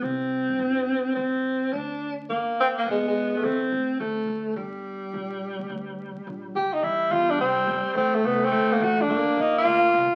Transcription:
X:1
M:4/4
L:1/8
Q:"Swing" 1/4=212
K:Gm
V:1 name="Tenor saxophone"
z8 | z8 | z2 C B, ^G, G,2 A,- | A, z6 z |
z8 | z6 G E | =E2 F D C4 | C A, =B, C2 _B, ^F D- |
D2 E F4- F |]
V:2 name="Alto saxophone"
C8 | C4 D3 z | B,4 =B,4 | C4 A,4 |
G,8- | G,6- G, z | G,8 | A,4 A,4 |
B,8 |]
V:3 name="Upright bass" clef=bass
C,,3 G,, G,,,4 | A,,,4 D,,4 | G,,,4 =E,,,4 | A,,,2 A,,2 D,,2 D,,2 |
G,,,4 B,,,3 D,, | D,,3 z B,,,2 ^F,,,2 | A,,,2 =E,,2 C,,2 F,,, z | A,,,2 C,,2 D,,2 A,,,2 |
G,,, z B,,,2 D,,2 C,, z |]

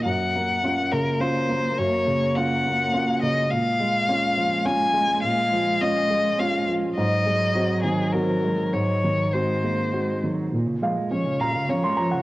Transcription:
X:1
M:3/4
L:1/16
Q:1/4=104
K:Bbm
V:1 name="Violin"
g6 B2 c4 | d4 g6 e2 | f8 a4 | f4 e4 f2 z2 |
e6 A2 B4 | d4 c6 z2 | z4 d2 f2 d4 |]
V:2 name="Upright piano"
z12 | z12 | z12 | z12 |
z12 | z12 | z2 f4 b3 c' b g |]
V:3 name="Upright piano"
G,,2 B,2 [DF]2 D,2 [DF]2 B,2 | G,,2 D,2 [DF]2 B,2 [DF]2 D,2 | B,,2 A,2 [DF]2 F,2 [DF]2 A,2 | B,,2 F,2 [DF]2 A,2 [DF]2 F,2 |
A,,2 A,2 [CG]2 E,2 [CG]2 A,2 | A,,2 E,2 [CG]2 A,2 [CG]2 E,2 | B,,2 A,2 D2 F2 D2 F,2 |]
V:4 name="Cello" clef=bass
B,12- | B,12 | A,12- | A,12 |
G,12- | G,4 A,2 B,2 A,2 G,2 | B,, D, F, A, F, D, B,, D, F, A, F, D, |]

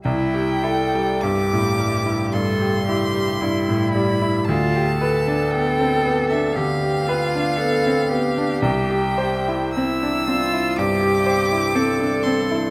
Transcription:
X:1
M:4/4
L:1/16
Q:1/4=57
K:C
V:1 name="Violin"
g4 d'4 c'6 b2 | a4 g3 e f8 | g4 e'4 d'6 c'2 |]
V:2 name="Cello"
E2 A2 G4 A2 G2 E4 | F2 A6 G2 F2 A2 G2- | G4 E2 F2 G4 A4 |]
V:3 name="Grand piano"
C,, G E G, G,, A,, G, E G,, G E G, G,, A,, G, E | D,, G B D B, C B, D D, G B D B, C B, D | C,, G c E C D C E G,, G c E C D C E |]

